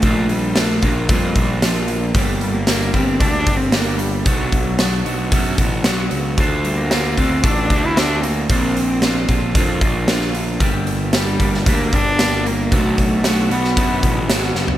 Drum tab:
HH |o-o-o-o-o-o-o-o-|o-o-o-o-o-o-o-o-|o-o-o-o-o-o-o-o-|o-o-o-o-o-o-o-o-|
SD |----o-------o---|----o-------o---|----o-------o---|----o-------o---|
FT |----------------|----------------|----------------|----------------|
BD |o-----o-o-o-----|o-----o-o-o-----|o-o-----o-o-----|o-----o-o-o-----|

HH |o-o-o-o-o-o-o-o-|o-o-o-o-o-o-o-o-|o-o-o-o-o-o-o---|
SD |----o-------oo--|----o--o----o---|----o--o----ooo-|
FT |----------------|----------------|---------------o|
BD |o-----o-o-o-----|o-----o-o-o-----|o-o-----o-o-----|